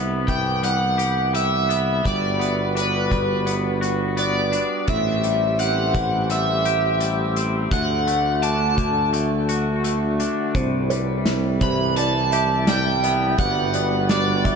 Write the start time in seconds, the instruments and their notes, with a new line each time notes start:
Already playing: tuba C2, clean electric guitar C3 G3 B3, harmonium C3 B3 E5
0.28 clean electric guitar E3, overdriven electric guitar G5, kick, closed hi-hat
0.63 clean electric guitar G3, overdriven electric guitar F#5, closed hi-hat
0.98 clean electric guitar G4, closed hi-hat
1.33 clean electric guitar G3, overdriven electric guitar E5, closed hi-hat
1.69 clean electric guitar B3, closed hi-hat
2.04 tuba G1, clean electric guitar G3, harmonium G3 F#4 B4, overdriven electric guitar D5, kick, closed hi-hat
2.39 clean electric guitar B3, closed hi-hat
2.75 clean electric guitar D4, overdriven electric guitar B4, closed hi-hat
3.11 clean electric guitar G3, kick, closed hi-hat
3.46 clean electric guitar B3, closed hi-hat
3.81 clean electric guitar F#4, closed hi-hat
4.17 clean electric guitar B3, overdriven electric guitar D5, closed hi-hat
4.52 clean electric guitar D4, closed hi-hat
4.88 tuba A1, clean electric guitar A2, harmonium A3 G4 C5, overdriven electric guitar E5, kick, closed hi-hat
5.24 clean electric guitar G3, closed hi-hat
5.59 clean electric guitar C4, overdriven electric guitar F#5, closed hi-hat
5.94 clean electric guitar E3, kick, closed hi-hat
6.30 clean electric guitar G3, overdriven electric guitar E5, closed hi-hat
6.65 clean electric guitar G4, closed hi-hat
7.00 clean electric guitar G3, closed hi-hat
7.36 clean electric guitar C4, closed hi-hat
7.71 tuba D2, clean electric guitar D3, harmonium D3 F#4, overdriven electric guitar F#5, kick, closed hi-hat
8.07 clean electric guitar A3, closed hi-hat
8.42 clean electric guitar D4, overdriven electric guitar A5, closed hi-hat
8.77 clean electric guitar D3, kick, closed hi-hat
9.13 clean electric guitar A3, closed hi-hat
9.49 clean electric guitar F#4, closed hi-hat
9.84 clean electric guitar A3, closed hi-hat
10.20 clean electric guitar D4, closed hi-hat
10.55 tuba C2, harmonium C3 G3 E4, clean electric guitar C3, felt piano C5, kick, closed hi-hat
10.90 clean electric guitar G3, felt piano B4, closed hi-hat
11.26 snare, closed hi-hat
11.61 clean electric guitar E3, felt piano C5, overdriven electric guitar B5, kick, closed hi-hat
11.96 clean electric guitar G3, felt piano D5, overdriven electric guitar A5, closed hi-hat
12.32 clean electric guitar G4, felt piano E5, closed hi-hat
12.67 clean electric guitar G3, felt piano D5, overdriven electric guitar G5, snare, closed hi-hat
13.03 clean electric guitar B3, felt piano E5, closed hi-hat
13.38 tuba G1, clean electric guitar G3, harmonium G3 F#4 B4, overdriven electric guitar F#5, kick, closed hi-hat
13.74 clean electric guitar B3, felt piano D5, closed hi-hat
14.09 clean electric guitar D4, felt piano D5, overdriven electric guitar D5, snare, closed hi-hat
14.45 clean electric guitar G3, felt piano E5, kick, closed hi-hat